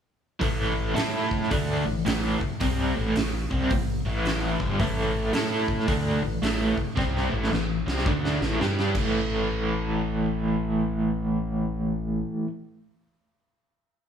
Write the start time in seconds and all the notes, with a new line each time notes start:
0.40 A1 A2 E3 A3, kick, open hi-hat
0.94 A2 A3 E4 A4, snare, open hi-hat
1.31 kick
1.43 snare
1.50 D2 D3 A3 D4, kick, open hi-hat
1.85 A1 A2 E3
2.05 A1 A2 E3 A3, snare, open hi-hat
2.40 muted overdriven electric guitar stroke, muted fingered electric bass stroke, kick
2.60 C2 C3 G3 C4, kick, open hi-hat
2.95 A1 A2 E3 A3
3.16 A1 A2 E3, snare, open hi-hat
3.50 C2 C3 G3 C4, kick
3.70 A1 A2 E3, kick, open hi-hat
4.05 A1 A2 E3 A3
4.25 snare, open hi-hat
4.60 G1 G2 D3 G3, kick
4.79 A1 A2 E3 A3, kick, open hi-hat
5.33 A2 A3 E4 A4, snare, open hi-hat
5.68 kick
5.80 snare
5.87 D2 D3 A3 D4, kick, open hi-hat
6.23 A1 A2 E3
6.42 A1 A2 E3 A3, snare, open hi-hat
6.77 muted overdriven electric guitar stroke, muted fingered electric bass stroke, kick
6.96 C2 C3 G3 C4, kick, snare
7.17 snare
7.30 A1 A2 E3 A3
7.44 snare
7.51 A1 A2 E3, snare
7.87 C2 C3 G3 C4, snare
7.98 snare
8.06 D2 D3 A3 D4, kick
8.25 snare
8.41 A1 A2 E3 A3, snare
8.60 G2 G3 D4 G4, snare
8.79 snare
8.95 A1 A2 E3, kick, crash
8.99 A3